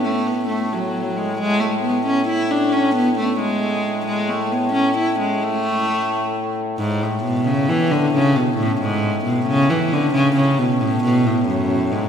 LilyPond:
<<
  \new Staff \with { instrumentName = "Viola da gamba" } { \clef bass \time 6/8 \key a \major \tempo 4. = 89 a8 b8 a8 fis4 gis8 | gis8 a8 b8 cis'8 e'8 d'8 | cis'8 b8 a8 gis4. | gis8 a8 b8 cis'8 e'8 gis8 |
a2~ a8 r8 | gis,8 a,8 b,8 cis8 e8 d8 | cis8 b,8 a,8 gis,4 b,8 | cis8 e8 d8 cis8 cis8 b,8 |
a,8 b,8 a,8 fis,4 gis,8 | }
  \new Staff \with { instrumentName = "Harmonium" } { \clef bass \time 6/8 \key a \major a,2. | a,2.~ | a,2.~ | a,2.~ |
a,2. | a,2.~ | a,2.~ | a,2.~ |
a,2. | }
>>